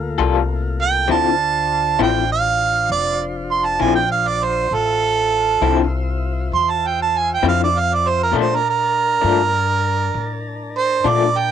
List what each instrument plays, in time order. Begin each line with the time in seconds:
Already playing: upright bass D2, tonewheel organ A3 A#3 F4
0.18 upright bass C2, clean electric guitar G3 A#3 F4 A4
0.82 harmonica G5
1.08 upright bass D2, clean electric guitar D3 F3 C4 E4, tonewheel organ D4 F4 C5, harmonica A5
1.99 upright bass A1, clean electric guitar D3 F3 C4 E4, harmonica G5
2.32 harmonica F5
2.90 upright bass F1, harmonica D5
3.51 harmonica C6
3.66 harmonica A5
3.79 upright bass A#1, clean electric guitar D3 F3 C4 E4, harmonica G#5
3.95 harmonica G5
4.12 harmonica F5
4.27 harmonica D5
4.44 harmonica C5
4.71 upright bass A1, tonewheel organ F4 C5 E5, harmonica A4
5.61 upright bass C2, clean electric guitar D3 F3 C4 E4
6.52 upright bass E2, harmonica C6
6.71 harmonica A5
6.87 harmonica G5
7.02 harmonica A5
7.18 harmonica G#5
7.34 harmonica G5
7.43 upright bass F2, clean electric guitar D3 F3 C4 E4
7.49 harmonica F5
7.64 harmonica D5
7.79 harmonica F5
7.94 harmonica D5
8.09 harmonica C5
8.23 harmonica A#4
8.32 clean electric guitar A#2 F3 A3 D4, upright bass A#2, tonewheel organ D4 A#4 A5
8.41 harmonica C5
8.56 harmonica A#4
8.70 harmonica A#4
9.21 upright bass G2, clean electric guitar A#2 F3 A3 D4
10.14 upright bass A2
10.78 harmonica C5
11.04 upright bass A#2, clean electric guitar A#2 F3 A3 D4
11.08 harmonica D5
11.39 harmonica G5